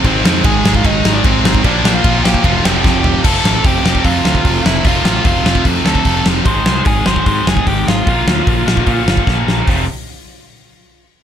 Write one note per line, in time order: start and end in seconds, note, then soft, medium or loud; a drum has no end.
0.03 0.20 G#1 loud
0.03 1.02 G#2 loud
0.03 0.23 G#2 loud
0.03 0.24 D#3 loud
0.03 1.03 D#3 loud
0.03 0.24 G#3 loud
0.03 1.03 G#3 medium
0.03 0.22 C4 medium
0.03 1.03 C4 loud
0.03 1.02 D#4 loud
0.03 0.23 C5 loud
0.03 kick loud
0.03 ride medium
0.24 0.40 F2 medium
0.24 0.43 G#2 medium
0.24 0.43 D#3 loud
0.24 0.44 G#3 loud
0.24 0.43 C4 medium
0.24 0.45 C5 loud
0.24 snare loud
0.44 0.60 G#1 medium
0.44 0.63 G#2 medium
0.44 0.64 D#3 medium
0.44 0.64 G#3 medium
0.44 0.72 G#4 medium
0.44 0.72 G#5 loud
0.44 kick loud
0.44 ride medium
0.64 0.80 G#1 loud
0.64 0.83 G#2 medium
0.64 0.84 D#3 loud
0.64 0.84 G#3 loud
0.64 snare loud
0.74 0.84 F4 medium
0.74 0.85 F5 loud
0.74 kick medium
0.84 1.00 G#1 loud
0.84 1.03 G#2 loud
0.84 1.04 D#3 loud
0.84 1.04 G#3 loud
0.84 1.12 D#4 medium
0.84 1.14 D#5 medium
0.84 kick loud
0.84 ride medium
1.03 1.20 G#1 medium
1.03 1.23 G#2 medium
1.03 1.22 G#2 medium
1.03 1.24 D#3 medium
1.03 1.23 D#3 medium
1.03 1.23 G#3 medium
1.03 1.24 G#3 loud
1.03 1.23 C4 medium
1.03 1.22 D#4 loud
1.03 snare loud
1.14 1.24 D4 medium
1.14 1.24 D5 loud
1.23 1.40 G#1 loud
1.23 1.62 G#2 medium
1.23 1.43 G#2 medium
1.23 1.62 D#3 medium
1.23 1.43 D#3 medium
1.23 1.63 G#3 medium
1.23 1.44 G#3 loud
1.23 1.62 C4 medium
1.23 1.64 C4 medium
1.23 1.64 D#4 medium
1.23 1.64 C5 medium
1.23 kick loud
1.23 ride medium
1.44 1.60 G#1 loud
1.44 1.63 G#2 medium
1.44 1.63 D#3 loud
1.44 1.63 G#3 loud
1.44 snare loud
1.54 kick medium
1.63 1.80 A#1 loud
1.63 2.42 A#2 medium
1.63 1.83 A#2 loud
1.63 2.43 F3 loud
1.63 1.83 F3 loud
1.63 1.83 A#3 loud
1.63 2.44 A#3 loud
1.63 1.92 D4 medium
1.63 2.44 D4 medium
1.63 1.94 D5 loud
1.63 kick loud
1.63 ride medium
1.84 2.00 A#1 medium
1.84 2.02 A#2 medium
1.84 2.03 F3 loud
1.84 2.03 A#3 loud
1.84 snare loud
1.94 2.22 F4 medium
1.94 2.25 F5 medium
2.03 2.20 A#1 loud
2.03 2.22 A#2 medium
2.03 2.23 F3 medium
2.03 2.23 A#3 medium
2.03 kick loud
2.03 ride medium
2.24 2.40 A#1 medium
2.24 2.43 A#2 medium
2.24 2.43 F3 medium
2.24 2.43 A#3 medium
2.24 2.43 G4 medium
2.24 2.44 G5 loud
2.24 snare loud
2.34 kick medium
2.42 2.60 F1 loud
2.42 3.22 F2 loud
2.42 2.62 F2 loud
2.42 3.22 C3 loud
2.42 2.63 C3 loud
2.42 3.22 F3 loud
2.42 2.63 F3 loud
2.42 3.23 A3 loud
2.42 3.24 C4 loud
2.42 3.01 F4 medium
2.42 3.00 F5 loud
2.42 kick loud
2.42 ride medium
2.63 2.80 F1 medium
2.63 2.82 F2 medium
2.63 2.83 C3 medium
2.63 2.83 F3 loud
2.63 3.21 G4 medium
2.63 3.21 G5 medium
2.63 snare loud
2.83 3.16 F1 loud
2.83 3.02 F2 medium
2.83 3.03 C3 medium
2.83 3.03 F3 loud
2.83 kick loud
2.83 snare medium
3.03 3.22 F2 medium
3.03 3.23 C3 medium
3.03 3.23 F3 medium
3.03 floor tom medium
3.23 3.38 F1 loud
3.23 3.85 F2 medium
3.23 3.83 C3 medium
3.23 3.86 F3 medium
3.23 3.83 F3 loud
3.23 3.85 A3 medium
3.23 3.84 C4 medium
3.23 3.83 F4 medium
3.23 3.62 A4 medium
3.23 3.82 A4 loud
3.23 3.62 A5 medium
3.23 kick loud
3.23 crash loud
3.44 3.58 A1 medium
3.44 snare loud
3.64 3.78 F1 medium
3.64 4.02 G4 medium
3.64 4.03 G5 medium
3.64 kick loud
3.64 open hi-hat medium
3.83 3.98 F1 medium
3.83 4.43 F2 medium
3.83 4.44 C3 medium
3.83 4.43 F3 medium
3.83 4.82 F3 medium
3.83 4.83 A3 medium
3.83 4.84 C4 medium
3.83 4.83 F4 medium
3.83 4.83 A4 medium
3.83 snare loud
3.95 kick medium
4.04 4.19 F2 medium
4.04 4.61 F4 medium
4.04 4.66 F5 medium
4.04 kick medium
4.04 open hi-hat medium
4.25 4.39 D2 medium
4.25 snare loud
4.35 kick medium
4.44 4.59 F1 medium
4.44 4.83 F2 medium
4.44 4.84 C3 medium
4.44 4.84 F3 medium
4.44 kick loud
4.44 open hi-hat medium
4.65 4.79 F1 medium
4.65 4.84 E4 medium
4.65 4.86 E5 medium
4.65 snare loud
4.83 4.99 F1 medium
4.83 5.44 F2 medium
4.83 5.44 C3 medium
4.83 5.43 F3 medium
4.83 5.43 F3 loud
4.83 5.43 A3 medium
4.83 5.45 C4 medium
4.83 5.43 F4 medium
4.83 5.42 A4 loud
4.83 kick loud
4.83 open hi-hat medium
4.87 5.23 F4 medium
4.87 5.25 F5 medium
5.04 5.19 A1 medium
5.04 snare loud
5.25 5.39 F1 medium
5.25 5.63 F4 medium
5.25 5.63 F5 medium
5.25 kick loud
5.25 open hi-hat medium
5.43 5.59 F1 medium
5.43 6.04 F2 medium
5.43 6.04 C3 medium
5.43 6.04 F3 medium
5.43 6.45 F3 medium
5.43 6.45 A3 medium
5.43 6.45 C4 medium
5.43 6.44 F4 medium
5.43 6.44 A4 medium
5.43 snare loud
5.55 kick medium
5.65 5.79 F2 medium
5.65 kick medium
5.65 open hi-hat medium
5.85 5.99 D2 medium
5.85 6.23 A4 medium
5.85 6.24 A5 loud
5.85 snare loud
5.95 kick medium
6.05 6.20 F1 medium
6.05 6.44 F2 medium
6.05 6.45 C3 medium
6.05 6.45 F3 medium
6.05 kick medium
6.05 open hi-hat medium
6.26 6.40 F1 medium
6.26 snare loud
6.45 6.60 G#1 medium
6.45 7.05 G#2 medium
6.45 7.05 D#3 medium
6.45 7.05 G#3 medium
6.45 7.06 C4 medium
6.45 7.05 D#4 medium
6.45 7.05 G#4 medium
6.45 6.83 C5 medium
6.45 6.87 C6 loud
6.45 kick loud
6.45 open hi-hat medium
6.66 6.80 C2 medium
6.66 snare loud
6.85 7.00 G#1 medium
6.85 7.04 G#4 medium
6.85 7.05 G#5 medium
6.85 kick loud
6.85 open hi-hat medium
7.06 7.21 G#1 medium
7.06 8.06 G#2 medium
7.06 8.07 D#3 medium
7.06 8.06 G#3 medium
7.06 8.06 C4 medium
7.06 8.06 D#4 medium
7.06 8.05 G#4 medium
7.06 7.25 C5 medium
7.06 7.26 C6 medium
7.06 snare loud
7.16 kick medium
7.26 7.40 G#2 medium
7.26 7.45 C5 medium
7.26 7.47 C6 loud
7.26 kick medium
7.26 open hi-hat medium
7.47 7.61 F1 medium
7.47 7.66 G#4 medium
7.47 7.66 G#5 medium
7.47 snare loud
7.57 kick medium
7.67 7.81 G#1 medium
7.67 7.85 G4 medium
7.67 7.88 G5 medium
7.67 kick medium
7.67 open hi-hat medium
7.87 8.01 G#1 medium
7.87 9.23 F4 medium
7.87 9.24 F5 medium
7.87 snare loud
8.07 8.21 A#1 medium
8.07 8.66 A#2 medium
8.07 8.66 D3 medium
8.07 8.67 F3 medium
8.07 8.66 A#3 medium
8.07 8.65 D4 medium
8.07 8.64 A#4 medium
8.07 kick loud
8.07 open hi-hat medium
8.27 8.41 D2 medium
8.27 snare loud
8.47 8.61 A#1 medium
8.47 kick loud
8.47 open hi-hat medium
8.66 8.81 A#1 medium
8.66 9.66 A#2 medium
8.66 9.67 D3 medium
8.66 9.67 F3 medium
8.66 9.67 A#3 medium
8.66 9.66 D4 medium
8.66 9.66 A#4 medium
8.66 snare loud
8.77 kick medium
8.86 9.01 A#2 medium
8.86 kick medium
8.86 open hi-hat soft
9.06 9.21 G1 medium
9.06 snare loud
9.17 kick medium
9.27 9.41 A#1 medium
9.27 kick medium
9.27 snare medium
9.47 9.61 A#1 medium
9.47 snare medium
9.67 9.86 F1 medium
9.67 9.83 F2 medium
9.67 9.84 C3 medium
9.67 9.84 F3 medium
9.67 9.84 A3 medium
9.67 9.84 C4 medium
9.67 kick medium
9.67 open hi-hat medium